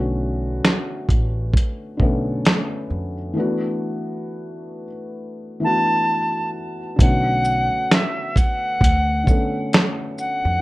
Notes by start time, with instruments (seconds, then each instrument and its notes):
Already playing: upright bass B1, felt piano D3 A3 B3 C#4 F#4
0.65 snare, closed hi-hat
1.09 upright bass A1, kick, closed hi-hat
1.54 kick, closed hi-hat
1.97 upright bass B1, felt piano D3 A3 B3, kick
2.02 felt piano C#4 A4
2.45 snare, closed hi-hat
2.90 upright bass F2
3.33 felt piano E3 A3 B3
3.38 felt piano D4 F#4
5.60 felt piano E3 A3 B3
5.64 felt piano D4 F#4, flute A5
6.96 upright bass B1, felt piano D3 A3 B3, kick
7.00 felt piano C#4 F#4, flute F#5, closed hi-hat
7.45 shaker
7.91 flute E5, snare, closed hi-hat
8.36 flute F#5, kick, closed hi-hat, shaker
8.81 upright bass D2, kick, closed hi-hat
9.24 felt piano D3 A3 B3, kick
9.28 felt piano C#4 A4, shaker
9.73 snare, closed hi-hat
10.18 flute F#5, shaker
10.45 upright bass F2